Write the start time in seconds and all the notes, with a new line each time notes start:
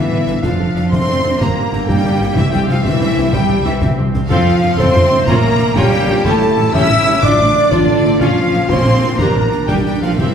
Already playing: G2 D3 E3 B3 D4 E4 E5
0.10 G1 D4 B4 D5
0.26 G1 D4 B4, snare
0.42 F1 F2 F3 D4 F4 A4 F5, concert bass drum, snare
0.59 F1 F3 D4 A4
0.75 F1 D4 A4, snare
0.90 F1 A3 C4 D4 A4 C5 C6, concert bass drum, snare
1.08 F1 D4 A4 D5
1.24 F1 D4 A4
1.40 G1 G2 A#3 D4 G4 A#4 A#5, concert bass drum, snare
1.56 G1 D3 D4 G4
1.73 G1 D4 G4 A4, snare
1.87 G1 G3 D4 G4 G5, concert bass drum, snare
2.04 G1 D4 G4 D5
2.19 G1 D4 G4
2.35 C2 C3 E3 C4 E4 G4 E5, concert bass drum, snare
2.51 C2 G3 C4 G4 G5, snare
2.66 C2 F3 G3 C4 F4 G4 F5, snare
2.83 C2 E3 A3 C4 E4 G4 E5, concert bass drum, snare
3.00 C2 C4 G4 C5
3.17 C2 C4 G4
3.31 C2 C3 G3 C4 G4 G5, concert bass drum, snare
3.48 C2 C4 G4
3.64 C2 E3 G3 C4 E4 G4 E5, snare
3.80 C2 C4 G4, concert bass drum, snare
3.97 C2 C4 G4 C5
4.14 C2 C4 G4, snare
4.28 F2 F3 C4 F4 A4 F5, concert bass drum, snare, crash
4.47 C3
4.61 F2 F3 A3 C4, snare
4.75 F2 A3 C4 F4 A4 C5 C6, concert bass drum, snare
4.94 F2 A3 F4 C5
5.11 F2 F3 C4
5.26 A#1 A#2 A#3 C#4 F4 A#4 A#5, concert bass drum, snare
5.43 A#1 A#3 C#4
5.59 F3, snare
5.75 A#1 G3 A#3 C#4 F4 G4 G5, concert bass drum, snare
5.92 C#5
6.07 A#1 F3 A#3 F4
6.24 A1 A2 A3 C#4 E4 G4 A4 A5, concert bass drum, snare
6.41 E3, snare
6.57 A1 G3 A3 C#4, snare
6.71 A1 C#4 E4 G4 E5 E6, concert bass drum, snare
6.75 E6
6.88 A1 A3 E4 C#5
7.04 A1 G3 C#4 G4
7.21 A1 A2 D4 F4 D5 D6, concert bass drum, snare
7.39 A1 F3 A3 D4
7.55 A3, snare
7.71 A1 D3 D4 F4 D5, concert bass drum, snare
8.04 A1 F3 A3 F4, snare
8.19 A#1 A#2 F3 C#4 F4 F5, concert bass drum, snare
8.37 F3
8.53 A#1 C#3 F3 A#3, snare
8.68 A#1 A#3 C4 C#4 F4 C5 C6, concert bass drum, snare
8.85 A#1 A#3 C#4 A#4
9.02 A#1 F3 A#3 F4
9.18 A#1 A#2 A#3 D4 G4 A#4 A#5, concert bass drum, snare
9.35 A#1 A#3 D4
9.52 D4, snare
9.68 A#1 G3 D4 G4 G5, concert bass drum, snare
9.84 G3 G4 A#4 G5
10.00 A#1 F3 G3 A#3 F4 G4 F5
10.17 C2 C3 E3 C4 E4 G4 E5, concert bass drum, snare
10.26 C3